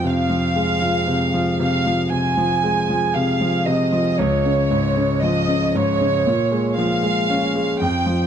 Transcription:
<<
  \new Staff \with { instrumentName = "Violin section" } { \time 4/4 \key f \minor \tempo 4 = 58 f''4. f''8 aes''4 f''8 ees''8 | des''4 ees''8 des''4 f''4 g''8 | }
  \new Staff \with { instrumentName = "Grand piano" } { \clef bass \time 4/4 \key f \minor <f, c f>16 f16 aes16 f16 c16 f16 c16 f16 c16 f16 aes16 f16 c16 f16 c16 f16 | des,16 des16 aes,16 des16 f16 des16 aes,16 des16 bes,16 aes16 f16 aes16 des'16 aes16 f,16 f16 | }
>>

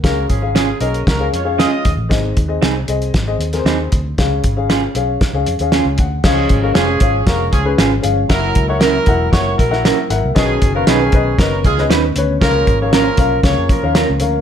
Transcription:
<<
  \new Staff \with { instrumentName = "Upright piano" } { \time 4/4 \key cis \mixolydian \tempo 4 = 116 <cis' gis' eis''>8 r16 <cis' gis' eis''>8 r16 <cis' gis' dis''>8 r16 <cis' gis' eis''>16 r16 <cis' gis' eis''>8. r8 | <bis gis' dis''>8 r16 <bis gis' dis''>8 r16 <bis gis' dis''>8 r16 <bis gis' dis''>16 r16 <bis gis' ais' bis'>8. r8 | <cis' gis' eis''>8 r16 <cis' gis' eis''>8 r16 <cis' gis' eis''>8 r16 <cis' gis' eis''>16 r16 <cis' gis' eis''>8. r8 | <cis' gis' eis''>8 r16 <cis' gis' eis''>8 r16 <cis' gis' eis''>16 r16 <cis' gis' eis''>8 r16 <cis' gis' b'>8 r16 <cis' gis' eis''>16 r16 |
<e' ais' fis''>8 r16 <e' ais' fis''>8 r16 <e' ais' fis''>16 r16 <e' ais' fis''>8 r16 <e' ais' fis''>8 r16 <e' ais' fis''>16 r16 | <cis' b' dis''>8 r16 <cis' b' eis''>8 r16 <cis' b' dis''>16 r16 <cis' b' dis''>8 r16 <cis' b' dis''>8 r16 <cis' b' cis''>16 r16 | <cis' ais' eis''>8 r16 <cis' ais' eis''>8 r16 <cis' ais' eis''>16 r16 <cis' ais' eis''>8 r16 <cis' ais' eis''>8 r16 <cis' ais' eis''>16 r16 | }
  \new Staff \with { instrumentName = "Upright piano" } { \clef bass \time 4/4 \key cis \mixolydian cis4. r2 r8 | gis,4. r2 r8 | cis4. r4. gis''8 fis''8 | cis4. r2 r8 |
r1 | b,4. r2 r8 | cis4. r2 r8 | }
  \new Staff \with { instrumentName = "Clean electric guitar" } { \time 4/4 \key cis \mixolydian r4 <cis' eis' gis'>8 r4. <cis' eis' gis'>8 r8 | r4 <bis dis' gis'>8 r4. <bis dis' gis'>8 r8 | r4 <cis' eis' gis'>8 r4. <cis' eis' gis'>8 r8 | r4 <cis' eis' gis'>8 r4. <cis' eis' gis'>8 r8 |
r4 <cis' e' ais'>8 r4. <cis' e' ais'>8 r8 | r4 <cis' dis' b'>8 r4. <cis' dis' b'>8 r8 | r4 <cis' eis' ais'>8 r4. <cis' eis' ais'>8 r8 | }
  \new Staff \with { instrumentName = "Horn section" } { \time 4/4 \key cis \mixolydian <ais fis' ais'>8 <eis cis' gis'>8 <eis cis' gis'>8 <ais fis' ais'>8 <ais fis' ais'>8 <gis eis' cis''>8 <gis eis' dis''>8. r16 | r1 | r1 | <eis cis' gis'>8. <ais fis' ais'>16 <eis cis' gis'>4 <ais fis' ais'>8 <eis cis' gis'>8 r4 |
<fis e' ais'>8. <ais fis' cis''>16 <fis e' ais'>4 <ais fis' cis''>8 <fis e' ais'>4 r8 | <dis cis' gis'>8. <ais fis' ais'>16 <dis cis' gis'>4 <ais fis' ais'>8 <gis eis' gis'>8 r4 | <eis cis' ais'>8. <ais gis' cis''>16 <eis cis' ais'>4 <ais gis' cis''>8 <eis cis' ais'>4 r8 | }
  \new Staff \with { instrumentName = "Tonewheel organ" } { \time 4/4 \key cis \mixolydian r1 | r1 | r1 | cis'1 |
e'1 | cis'1~ | cis'1 | }
  \new Staff \with { instrumentName = "Tonewheel organ" } { \clef bass \time 4/4 \key cis \mixolydian r1 | r1 | r1 | <eis gis>1 |
<fis ais>1 | <dis b>1 | <eis ais>1 | }
  \new Staff \with { instrumentName = "Fingered electric bass" } { \clef bass \time 4/4 \key cis \mixolydian cis,8 gis,,4 b,,8 cis,8 eis,8. r16 dis,16 a,,16 | gis,,8 dis,8 bis,,8 bis,,8 gis,,8 dis,8 dis,8 d,8 | cis,8 gis,,4 b,,8 r16 cis,16 eis,16 dis,8 cis,16 d,8 | cis,8 gis,,8 eis,,8 gis,,8 eis,,8 cis,8 gis,,8 g,,8 |
fis,,8 cis,4 e,,8 fis,,8 ais,,8. r16 gis,,16 bis,,16 | b,,8 fis,,8 b,,8 b,,8 fis,,8 cis,8 dis,8 d,8 | cis,8 gis,,4 b,,8 cis,16 eis,16 r16 dis,8 cis,16 d,8 | }
  \new DrumStaff \with { instrumentName = "Drums" } \drummode { \time 4/4 <hh bd sn>8 <hh bd>8 <hh sn>8 hh16 hh16 <hh bd sn>8 hh8 <hh sn>8 <hh bd>8 | <hh bd sn>8 <hh bd>8 <hh sn>8 hh16 hh16 <hh bd sn>8 hh16 <hh sn>16 <hh sn>8 <hh bd>8 | <hh bd sn>8 <hh bd>8 <hh sn>8 hh8 <hh bd sn>8 hh16 hh16 <hh sn>8 <hh bd>8 | <cymc bd sn>8 <hh bd>8 <hh sn>8 <hh bd>8 <hh bd sn>8 <hh bd>8 <hh sn>8 hh8 |
<hh bd sn>8 <hh bd>8 <hh sn>8 <hh bd>8 <hh bd sn>8 <hh bd>16 sn16 <hh sn>8 hh8 | <hh bd sn>8 <hh bd>8 <hh sn>8 <hh bd>8 <hh bd sn>8 <hh bd>16 sn16 <hh sn>8 hh8 | <hh bd sn>8 <hh bd>8 <hh sn>8 <hh bd>8 <hh bd sn>8 <hh bd>8 <hh sn>8 hh8 | }
>>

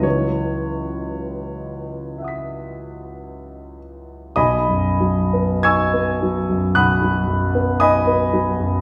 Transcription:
<<
  \new Staff \with { instrumentName = "Grand piano" } { \time 4/4 \key b \major \tempo 4 = 56 << { cis''2.~ cis''8 r8 | <dis'' gis'' b'' dis'''>4 <gis'' cis''' e''' gis'''>4 <fis'' b'' dis''' fis'''>4 <dis'' gis'' b'' dis'''>4 | } \\ { r2 <e'' fis'' dis''' b'''>2 | r1 | } >> }
  \new Staff \with { instrumentName = "Grand piano" } { \clef bass \time 4/4 \key b \major <cis, e fis dis' b'>1 | b,,16 fis,16 fis16 b16 dis'16 b16 fis16 fis,16 b,,16 fis16 fis,16 b16 dis'16 b16 fis16 fis,16 | }
>>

